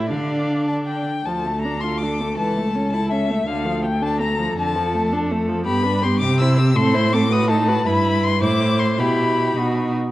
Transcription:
Already playing: cello A2, viola E4, violin E5
0.08 cello D3, viola D4, violin D5 F5
0.68 violin A5
0.87 violin G5
1.26 cello D2, viola F3, violin A4 A5
1.45 viola A3
1.61 viola D4, violin A#5
1.80 viola F4, violin C6
1.98 violin D6
2.03 viola D4
2.20 viola A3
2.37 cello C#2, viola E3, violin A5
2.57 viola A3
2.75 viola C#4
2.93 viola E4, violin A5
3.11 viola C#4, violin E5
3.30 viola A3
3.48 cello D2, viola D3, violin A4 F5
3.65 viola F3
3.84 viola A3, violin G5
4.02 viola D4, violin A5
4.20 viola A3, violin A#5
4.39 viola F3
4.57 cello F2, viola D3, violin A5
4.76 viola F3
4.95 viola A3
5.12 viola D4
5.31 viola A3
5.49 viola F3
5.65 cello G2, viola B3, violin G4 B5
5.83 viola D4, violin B4
6.01 viola B3, violin G4 C6
6.20 cello C3, viola C4, violin G4 D6
6.40 viola E4, violin C5 E6
6.57 viola C4, violin G4
6.76 cello A2, viola C4, violin A4 C6
6.94 viola E4, violin C5
7.13 viola C4, violin A4 D6
7.31 viola F#4, violin B4 D#6
7.49 viola D#4, violin A4 A5
7.67 viola F#4, violin B4
7.86 cello G2, viola E4, violin B4 B5
8.23 violin C6
8.41 cello A2, viola E4, violin C5 D6
8.79 violin C6
8.99 cello B2, viola E4, violin G4 B5
9.56 cello B2, viola D#4, violin F#4

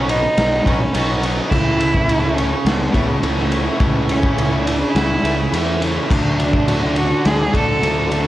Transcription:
Already playing: fingered electric bass B1, distorted electric guitar B2, cello C#4, string section D#4 B4 F#5 B5
0.06 distorted electric guitar F#3 B3 D#4, cello D#4, ride
0.10 distorted electric guitar F#4
0.23 muted distorted electric guitar stroke
0.37 fingered electric bass B1, snare, ride
0.65 fingered electric bass B1, distorted electric guitar F#3 B3 D#4 F#4, cello C#4, kick, ride
0.80 muted distorted electric guitar stroke
0.93 fingered electric bass B1, distorted electric guitar B2 F#3 B3 D#4 F#4, ride
1.21 distorted electric guitar F#3 B3 D#4 F#4, ride
1.37 distorted electric guitar B3 D#4 F#4
1.49 fingered electric bass C#2, distorted electric guitar C#3 E3, cello E4, string section E4 C#5 A5 C#6, kick, crash
1.53 distorted electric guitar A3 E4
1.80 ride
1.92 distorted electric guitar E3 A3 E4, kick
2.07 fingered electric bass C#2, distorted electric guitar C#3 E3 A3 E4, ride
2.21 distorted electric guitar E3 A3 E4
2.36 distorted electric guitar C#3 E3 A3 E4, cello C#4, ride
2.51 muted distorted electric guitar stroke
2.65 fingered electric bass C#2, cello B3, snare, ride
2.92 fingered electric bass C#2, distorted electric guitar C#3 E3 A3 E4, kick, ride
3.08 muted distorted electric guitar stroke
3.20 fingered electric bass C#2, distorted electric guitar C#3 E3 A3 E4, cello A3, ride
3.38 snare
3.49 distorted electric guitar C#3 E3 A3 E4, ride
3.64 distorted electric guitar E3 A3 E4
3.77 fingered electric bass C#2, distorted electric guitar C#3 E3 A3 E4, kick, ride
3.82 string section G#5
4.09 cello C#4, ride
4.21 distorted electric guitar E3 A3 E4, kick
4.36 fingered electric bass C#2, distorted electric guitar C#3 E3 A3 E4, ride
4.50 distorted electric guitar E3 A3 E4
4.62 distorted electric guitar C#3 E3, cello D4
4.67 distorted electric guitar A3 E4, ride
4.79 muted distorted electric guitar stroke
4.91 cello E4
4.95 fingered electric bass C#2, snare, ride
5.22 fingered electric bass C#2, distorted electric guitar C#3 E3 A3 E4, ride
5.37 muted distorted electric guitar stroke
5.51 fingered electric bass E2, distorted electric guitar C#3 E3 A3 E4, ride
5.80 distorted electric guitar C#3 E3 A3 E4, ride
5.94 distorted electric guitar E3 A3 E4
6.08 fingered electric bass D2, distorted electric guitar D3 F#3 A3 D4, string section F#4 D5 A5 D6, kick, crash
6.40 cello D4, ride
6.51 distorted electric guitar F#3 A3 D4, kick
6.65 fingered electric bass D2, distorted electric guitar D3 F#3 A3 D4, ride
6.81 distorted electric guitar F#3 A3 D4
6.94 distorted electric guitar D3 F#3 A3 D4, cello F#4, ride
7.10 muted distorted electric guitar stroke
7.25 fingered electric bass D2, cello G#4, snare, ride
7.51 fingered electric bass D2, distorted electric guitar D3 F#3 A3 D4, kick, ride
7.57 cello A4
7.67 muted distorted electric guitar stroke
7.80 fingered electric bass D2, distorted electric guitar D3 F#3 A3, ride
7.84 distorted electric guitar D4
8.08 distorted electric guitar D3 F#3 A3 D4, ride
8.22 distorted electric guitar A3 D4

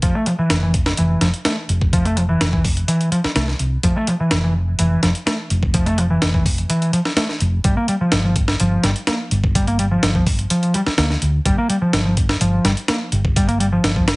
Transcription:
0.02 fingered electric bass F1, picked electric bass F3, kick, closed hi-hat
0.15 picked electric bass A3
0.26 picked electric bass F3, closed hi-hat
0.39 picked electric bass E3
0.50 fingered electric bass F1, snare, closed hi-hat
0.63 picked electric bass E3
0.74 kick, closed hi-hat
0.86 snare
0.97 fingered electric bass F1, picked electric bass E3, closed hi-hat
1.21 fingered electric bass F1, picked electric bass F3, snare, closed hi-hat
1.34 closed hi-hat
1.45 picked electric bass A3, snare, closed hi-hat
1.69 fingered electric bass F1, closed hi-hat
1.81 kick
1.93 picked electric bass F3, kick, closed hi-hat
2.05 picked electric bass A3, closed hi-hat
2.17 picked electric bass F3, closed hi-hat
2.29 picked electric bass E3
2.41 fingered electric bass F1, snare, closed hi-hat
2.53 picked electric bass E3, kick
2.65 kick, open hi-hat
2.77 closed hi-hat
2.88 picked electric bass E3, closed hi-hat
3.01 closed hi-hat
3.12 picked electric bass F3, closed hi-hat
3.24 muted fingered electric bass stroke, snare
3.36 fingered electric bass C2, picked electric bass A3, snare, closed hi-hat
3.48 snare
3.59 fingered electric bass C2, closed hi-hat
3.83 fingered electric bass F1, picked electric bass F3, kick, closed hi-hat
3.96 picked electric bass A3
4.07 picked electric bass F3, closed hi-hat
4.20 picked electric bass E3
4.31 fingered electric bass F1, snare, closed hi-hat
4.44 picked electric bass E3
4.79 fingered electric bass F1, picked electric bass E3, closed hi-hat
5.03 fingered electric bass F1, picked electric bass F3, snare, closed hi-hat
5.15 closed hi-hat
5.26 picked electric bass A3, snare, closed hi-hat
5.50 fingered electric bass F1, closed hi-hat
5.63 kick
5.74 picked electric bass F3, kick, closed hi-hat
5.86 picked electric bass A3, closed hi-hat
5.98 picked electric bass F3, closed hi-hat
6.10 picked electric bass E3
6.22 fingered electric bass F1, snare, closed hi-hat
6.34 picked electric bass E3, kick
6.46 kick, open hi-hat
6.58 closed hi-hat
6.70 picked electric bass E3, closed hi-hat
6.82 closed hi-hat
6.93 picked electric bass F3, closed hi-hat
7.05 snare
7.17 picked electric bass A3, snare, closed hi-hat
7.29 snare
7.40 fingered electric bass F1, closed hi-hat
7.64 fingered electric bass G1, picked electric bass G3, kick, closed hi-hat
7.77 picked electric bass A#3
7.88 picked electric bass G3, closed hi-hat
8.01 picked electric bass F3
8.12 fingered electric bass G1, snare, closed hi-hat
8.25 picked electric bass F3
8.36 kick, closed hi-hat
8.48 snare
8.60 fingered electric bass G1, picked electric bass F3, closed hi-hat
8.83 fingered electric bass G1, picked electric bass G3, snare, closed hi-hat
8.96 closed hi-hat
9.07 picked electric bass A#3, snare, closed hi-hat
9.31 fingered electric bass G1, closed hi-hat
9.44 kick
9.55 picked electric bass G3, kick, closed hi-hat
9.67 picked electric bass A#3, closed hi-hat
9.79 picked electric bass G3, closed hi-hat
9.91 picked electric bass F3
10.03 fingered electric bass G1, snare, closed hi-hat
10.15 picked electric bass F3, kick
10.27 kick, open hi-hat
10.39 closed hi-hat
10.50 picked electric bass F3, closed hi-hat
10.63 closed hi-hat
10.74 picked electric bass G3, closed hi-hat
10.87 muted fingered electric bass stroke, snare
10.98 fingered electric bass D2, picked electric bass A#3, snare, closed hi-hat
11.10 snare
11.22 fingered electric bass D2, closed hi-hat
11.45 fingered electric bass G1, picked electric bass G3, kick, closed hi-hat
11.58 picked electric bass A#3
11.70 picked electric bass G3, closed hi-hat
11.82 picked electric bass F3
11.93 fingered electric bass G1, snare, closed hi-hat
12.05 picked electric bass F3
12.17 kick, closed hi-hat
12.29 snare
12.41 fingered electric bass G1, picked electric bass F3, closed hi-hat
12.65 fingered electric bass G1, picked electric bass G3, snare, closed hi-hat
12.77 closed hi-hat
12.88 picked electric bass A#3, snare, closed hi-hat
13.12 fingered electric bass G1, closed hi-hat
13.25 kick
13.36 picked electric bass G3, kick, closed hi-hat
13.48 picked electric bass A#3, closed hi-hat
13.60 picked electric bass G3, closed hi-hat
13.72 picked electric bass F3
13.84 fingered electric bass G1, snare, closed hi-hat
13.96 picked electric bass F3, kick
14.08 snare, closed hi-hat

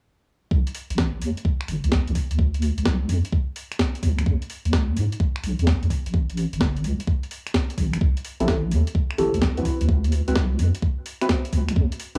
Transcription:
0.51 wobble bass C2, kick
0.67 closed hi-hat
0.75 open hi-hat
0.90 wobble bass A1, closed hi-hat
0.98 kick, snare
1.22 wobble bass E2, open hi-hat
1.37 closed hi-hat
1.45 kick
1.61 finger snap
1.68 wobble bass G1, finger snap, open hi-hat
1.84 wobble bass C2, closed hi-hat
1.92 kick, snare
2.07 wobble bass C2, closed hi-hat
2.15 kick, open hi-hat
2.31 wobble bass D2, closed hi-hat
2.39 kick
2.54 closed hi-hat
2.62 open hi-hat
2.78 wobble bass C2, closed hi-hat
2.85 kick, snare
3.09 wobble bass F#2, open hi-hat
3.25 closed hi-hat
3.33 kick
3.56 open hi-hat
3.72 finger snap, closed hi-hat
3.79 kick, snare
3.95 closed hi-hat
4.03 wobble bass D2, kick, open hi-hat
4.18 wobble bass C2, finger snap, closed hi-hat
4.26 wobble bass E2, kick
4.42 closed hi-hat
4.50 open hi-hat
4.65 wobble bass D2, closed hi-hat
4.73 kick, snare
4.97 wobble bass A2, open hi-hat
5.12 closed hi-hat
5.20 kick
5.36 finger snap
5.43 wobble bass B1, finger snap, open hi-hat
5.59 wobble bass E2, closed hi-hat
5.67 kick, snare
5.82 wobble bass E2, closed hi-hat
5.90 kick, open hi-hat
6.06 wobble bass A1, closed hi-hat
6.14 kick
6.30 closed hi-hat
6.37 open hi-hat
6.53 wobble bass G1, closed hi-hat
6.61 kick, snare
6.76 closed hi-hat
6.84 wobble bass D2, open hi-hat
7.00 closed hi-hat
7.07 kick
7.23 closed hi-hat
7.31 open hi-hat
7.47 finger snap, closed hi-hat
7.54 kick, snare
7.70 closed hi-hat
7.78 wobble bass A1, kick, open hi-hat
7.93 wobble bass G1, finger snap, closed hi-hat
8.01 wobble bass C2, kick
8.17 closed hi-hat
8.25 open hi-hat
8.40 wobble bass A1, synth stab C4 E4 G4 A4, closed hi-hat
8.48 kick, snare
8.71 wobble bass E2, open hi-hat
8.87 closed hi-hat
8.95 kick
9.11 finger snap
9.18 wobble bass G1, synth stab C4 E4 G4 A4, finger snap, open hi-hat
9.34 wobble bass C2, closed hi-hat
9.42 kick, snare
9.57 wobble bass C2, synth stab C4 E4 F#4 B4, closed hi-hat
9.65 kick, open hi-hat
9.81 wobble bass D2, closed hi-hat
9.89 kick
10.04 closed hi-hat
10.12 open hi-hat
10.28 wobble bass C2, synth stab C4 E4 F#4 B4, closed hi-hat
10.36 kick, snare
10.59 wobble bass F#2, open hi-hat
10.75 closed hi-hat
10.82 kick
11.06 open hi-hat
11.21 synth stab C4 E4 F#4 B4, finger snap, closed hi-hat
11.29 kick, snare
11.45 closed hi-hat
11.53 wobble bass D2, kick, open hi-hat
11.68 wobble bass C2, finger snap, closed hi-hat
11.76 wobble bass E2, kick
11.92 closed hi-hat
12.00 open hi-hat

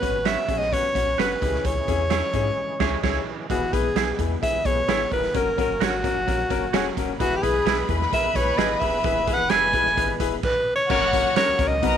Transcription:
Already playing: tonewheel organ F#3 B3 C#4, alto saxophone B4
0.01 sub bass G#1, upright piano C#4 F#4 B4, kick, closed hi-hat
0.25 upright piano C#4 F#4 B4, clean electric guitar F#4 B4 C#5, alto saxophone E5, snare, closed hi-hat
0.49 sub bass A#1, upright piano C#4 F#4 G#4, kick, closed hi-hat
0.58 alto saxophone D#5, snare
0.72 upright piano C#4 F#4 B4, alto saxophone C#5, kick, closed hi-hat
0.95 sub bass B1, upright piano C#4 F#4 C#5, kick, closed hi-hat
1.07 sub bass B1
1.18 sub bass F#1, upright piano C#4 F#4 B4, clean electric guitar F#4 B4 C#5, alto saxophone B4, snare, closed hi-hat
1.40 sub bass C#2, upright piano C#3 C#4 E4 G4, tonewheel organ E3 G#3 C#4, kick, closed hi-hat
1.47 upright piano G#4
1.54 snare
1.65 sub bass C#2, alto saxophone C#5, kick, closed hi-hat
1.88 sub bass E2, upright piano C#4 E4 G#4, kick, closed hi-hat
2.10 upright piano C#4 E4 G#4, clean electric guitar E4 G#4 C#5, snare, closed hi-hat
2.33 sub bass G#2, upright piano C#4 E4 G#4, kick, closed hi-hat
2.80 sub bass C#2, upright piano C#4 E4 G#4, clean electric guitar E4 G#4 C#5, kick, snare, crash
3.03 sub bass C#2, upright piano C#4 E4 G#4, clean electric guitar E4 G#4 C#5, kick, snare, crash
3.50 sub bass E1, tonewheel organ E3 G#3 B3, upright piano E3 B3 E4 G#4, alto saxophone F#4, kick, closed hi-hat
3.73 sub bass B1, upright piano B3 E4 B4, alto saxophone G#4, kick, closed hi-hat
3.95 sub bass B1, clean electric guitar B3 E4 G#4, upright piano B3 E4 G#4, snare, closed hi-hat
4.19 sub bass E2, upright piano B3 E4 G#4, kick, closed hi-hat
4.42 upright piano B3 E4 G#4, alto saxophone E5, kick, closed hi-hat
4.54 sub bass B1
4.65 sub bass B1, upright piano B3 E4 G#4, alto saxophone C#5, kick, closed hi-hat
4.88 sub bass G#1, clean electric guitar B3 E4 G#4, upright piano B3 E4 G#4, snare, closed hi-hat
5.12 sub bass E1, upright piano B3 E4 A#4, alto saxophone B4, kick, open hi-hat
5.23 snare
5.34 sub bass F#1, tonewheel organ F#3 A#3 C#4, upright piano C#4 F#4 A#4, alto saxophone A#4, kick, closed hi-hat
5.58 upright piano C#4 F#4 A#4, alto saxophone A#4, kick, closed hi-hat
5.69 sub bass F#1
5.80 sub bass G#1, upright piano C#4 F#4 A#4, clean electric guitar F#4 A#4 C#5, alto saxophone F#4, snare, closed hi-hat
6.04 upright piano C#4 F#4 A#4, kick, closed hi-hat
6.16 sub bass F#1
6.27 sub bass A#1, upright piano C#4 F#4 A#4, kick, closed hi-hat
6.50 sub bass F#1, upright piano C#4 F#4 A#4, kick, closed hi-hat
6.73 sub bass E1, upright piano C#4 F#4 G#4, clean electric guitar F#4 A#4 C#5, snare, closed hi-hat
6.97 sub bass D#1, upright piano C#4 F#4 A#4, kick, closed hi-hat
7.19 sub bass E1, tonewheel organ E3 G#3 B3, upright piano E3 E4 G#4 B4, alto saxophone F#4, string section B4 B5, kick, closed hi-hat
7.36 alto saxophone G4
7.43 sub bass B1, upright piano E4 G#4 B4, alto saxophone G#4, kick, closed hi-hat
7.66 sub bass B1, clean electric guitar B3 E4 G#4, upright piano E4 G#4 B4, snare, closed hi-hat
7.89 sub bass E2, upright piano E4 G#4 B4, kick, closed hi-hat
8.01 snare
8.13 upright piano E4 G#4 A#4, alto saxophone E5, kick, closed hi-hat
8.24 sub bass B1
8.35 sub bass B1, upright piano E4 G#4 B4, alto saxophone C#5, kick, closed hi-hat
8.58 sub bass G#1, clean electric guitar B3 E4 G#4, upright piano E4 G#4 B4, alto saxophone D#5, snare, closed hi-hat
8.80 sub bass D#1, upright piano E4 G#4 B4, alto saxophone E5, kick, open hi-hat
9.04 sub bass E1, upright piano E3 E4 G#4 B4, kick, closed hi-hat
9.27 upright piano E4 G#4 B4, kick, closed hi-hat
9.34 alto saxophone F#5
9.39 sub bass E1
9.50 sub bass F#1, clean electric guitar B3 E4 G#4, upright piano E4 G#4 B4, alto saxophone G#5, snare, closed hi-hat
9.73 upright piano E4 G#4 B4, kick, closed hi-hat
9.86 sub bass E1, snare
9.97 sub bass G#1, upright piano E4 G#4 B4, kick, closed hi-hat
10.20 sub bass E1, upright piano E4 G#4 B4, kick, closed hi-hat
10.43 alto saxophone B4, kick, crash
10.76 alto saxophone C#5
10.89 sub bass F#1, tonewheel organ F#3 A#3 C#4, upright piano C#4 F#4 A#4, string section F#4 F#5, alto saxophone C#5, kick, crash
11.13 upright piano C#4 F#4 A#4, kick, closed hi-hat
11.36 clean electric guitar C#4 F#4 A#4, upright piano C#4 F#4 A#4, alto saxophone C#5, snare, closed hi-hat
11.48 sub bass C#2
11.59 sub bass C#2, upright piano C#4 F#4 A#4, kick, closed hi-hat
11.67 alto saxophone D#5
11.82 sub bass B1, upright piano B2 D#4 F#4 B4, tonewheel organ B3 D#4, string section A#4 A#5, kick, closed hi-hat

